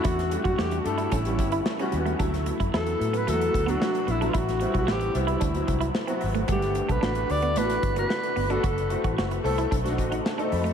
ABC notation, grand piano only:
X:1
M:4/4
L:1/16
Q:1/4=112
K:D
V:1 name="Grand piano"
z16 | z16 | z16 | z16 |
z8 z2 ^d f a2 b2 |]
V:2 name="Grand piano"
z2 [G,A,DF]4 [G,A,DA]2 z [G,B,CE]4 [G,B,CF]3 | [F,A,B,E]4 [F,A,B,E]4 [F,A,B,F]3 [F,A,B,D]4 [F,A,B,E] | z2 [G,B,=CE]4 [G,B,CE]2 z [F,B,CE]4 [F,B,CF]3 | [A,B,Df]4 [A,B,DF]4 [A,B,DEF]3 [A,B,DF]4 [A,B,DF] |
z2 [A,=CEF]4 [A,CEA]2 z [A,CD^DF]4 [A,CDA]3 |]